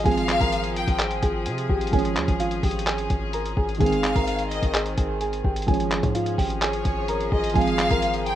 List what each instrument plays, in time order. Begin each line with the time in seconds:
Already playing: string section F3 G#4
0.04 808-style bass G#1, grand piano F3 G#3 C4, string section C4, synth keys G#4 G#5, violin section F5, kick, closed hi-hat
0.11 closed hi-hat
0.17 closed hi-hat
0.29 clap, closed hi-hat
0.41 808-style bass G#1, synth keys A#4 A#5, kick, closed hi-hat
0.52 closed hi-hat
0.64 closed hi-hat
0.76 violin section G5, closed hi-hat
0.88 808-style bass G#1, kick, closed hi-hat
0.99 synth keys G#4 G#5, clap, closed hi-hat
1.11 closed hi-hat
1.22 808-style bass G#1, synth keys G#4 G#5, kick, closed hi-hat
1.46 808-style bass C3, synth keys G#4 G#5, closed hi-hat
1.58 closed hi-hat
1.70 808-style bass G#1, synth keys G4 G5, kick
1.81 closed hi-hat
1.87 closed hi-hat
1.91 808-style bass G#1, grand piano F3 G#3 C#4, string section C#4, synth keys G#4 G#5, kick, closed hi-hat
1.99 closed hi-hat
2.05 closed hi-hat
2.16 808-style bass D#2, clap, closed hi-hat
2.28 808-style bass G#1, kick, closed hi-hat
2.40 synth keys F4 F5, closed hi-hat
2.51 closed hi-hat
2.63 808-style bass G#1, synth keys G4 G5, kick, closed hi-hat, open hi-hat
2.71 closed hi-hat
2.79 closed hi-hat
2.87 synth keys G#4 G#5, clap, closed hi-hat
2.98 closed hi-hat
3.10 808-style bass G#1, kick, closed hi-hat
3.33 synth keys A#4 A#5, closed hi-hat
3.46 closed hi-hat
3.57 808-style bass G#1, synth keys G#4 G#5, kick
3.69 closed hi-hat
3.75 grand piano D#3, closed hi-hat
3.80 808-style bass G#1, string section D#3 C4, grand piano G#3 C4, synth keys G#4 G#5, violin section F5, kick, closed hi-hat
3.86 closed hi-hat
3.92 closed hi-hat
4.04 clap, closed hi-hat
4.16 808-style bass G#1, synth keys A#4 A#5, kick, closed hi-hat
4.27 closed hi-hat
4.39 closed hi-hat
4.51 violin section D#5, closed hi-hat
4.63 808-style bass G#1, kick, closed hi-hat
4.74 synth keys G#4 G#5, clap, closed hi-hat
4.86 closed hi-hat
4.98 808-style bass G#1, synth keys G#4 G#5, kick, closed hi-hat
5.21 synth keys G#4 G#5, closed hi-hat
5.33 closed hi-hat
5.45 808-style bass G#1, synth keys G4 G5, kick
5.56 closed hi-hat
5.62 closed hi-hat
5.67 808-style bass G#1, grand piano F3 G#3 C#4, string section F3 C#4 G#4, synth keys G#4 G#5, kick, closed hi-hat
5.74 closed hi-hat
5.80 closed hi-hat
5.91 clap, closed hi-hat
6.03 808-style bass G#2, kick, closed hi-hat
6.15 synth keys F4 F5, closed hi-hat
6.26 closed hi-hat
6.38 808-style bass G#1, synth keys G4 G5, kick, open hi-hat
6.50 closed hi-hat
6.62 synth keys G#4 G#5, violin section C#5, clap, closed hi-hat
6.73 closed hi-hat
6.85 808-style bass G#1, kick, closed hi-hat
7.08 synth keys A#4 A#5, closed hi-hat
7.21 closed hi-hat
7.32 808-style bass G#1, synth keys G#4 G#5, violin section D#5, kick
7.44 closed hi-hat
7.50 closed hi-hat
7.54 808-style bass G#1, grand piano F3 G#3 C4, string section C4, synth keys G#4 G#5, violin section F5, kick, closed hi-hat
7.61 closed hi-hat
7.67 closed hi-hat
7.79 clap, closed hi-hat
7.91 808-style bass G#1, synth keys A#4 A#5, kick, closed hi-hat
8.02 closed hi-hat
8.14 closed hi-hat
8.26 violin section G5, closed hi-hat